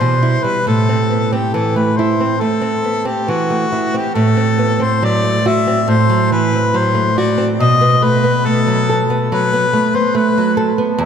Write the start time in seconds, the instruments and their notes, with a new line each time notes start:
Already playing: nylon-string guitar E3, harmonica C5
0.01 nylon-string guitar B2
0.23 nylon-string guitar E4
0.44 nylon-string guitar G3, harmonica B4
0.67 nylon-string guitar A2, harmonica A4
0.89 nylon-string guitar C4
1.11 nylon-string guitar B3
1.32 nylon-string guitar C4, harmonica G4
1.54 nylon-string guitar E3, harmonica A4
1.76 nylon-string guitar A3, harmonica B4
1.97 nylon-string guitar E4, harmonica C5
2.20 nylon-string guitar C4
2.40 nylon-string guitar A3, harmonica A4
2.61 nylon-string guitar C4
2.84 nylon-string guitar B3
3.05 nylon-string guitar C4, harmonica G4
3.28 nylon-string guitar E3, harmonica F#4
3.50 nylon-string guitar A3
3.72 nylon-string guitar E4
3.94 nylon-string guitar C4, harmonica G4
4.14 nylon-string guitar A2, harmonica A4
4.37 nylon-string guitar C4
4.58 nylon-string guitar B3
4.80 nylon-string guitar C4, harmonica C5
5.02 nylon-string guitar F#3, harmonica D5
5.24 nylon-string guitar A3
5.46 nylon-string guitar F#4, harmonica E5
5.67 nylon-string guitar C4
5.88 nylon-string guitar A2, harmonica C5
6.10 nylon-string guitar F#3
6.32 nylon-string guitar E3, harmonica B4
6.53 nylon-string guitar C4
6.74 nylon-string guitar F#3, harmonica C5
6.94 nylon-string guitar A3
7.18 nylon-string guitar F#4, harmonica D5
7.38 nylon-string guitar C4
7.60 nylon-string guitar B2, harmonica D#5
7.81 nylon-string guitar B3
8.02 nylon-string guitar A3, harmonica B4
8.24 nylon-string guitar B3
8.46 nylon-string guitar A3, harmonica A4
8.67 nylon-string guitar F#3
8.89 nylon-string guitar A4
9.10 nylon-string guitar B3
9.32 nylon-string guitar F#3, harmonica B4
9.53 nylon-string guitar B3
9.73 nylon-string guitar A3
9.95 nylon-string guitar B3, harmonica C5
10.15 nylon-string guitar A3, harmonica B4
10.38 nylon-string guitar F#3
10.57 nylon-string guitar A4
10.78 nylon-string guitar B3
10.98 nylon-string guitar E2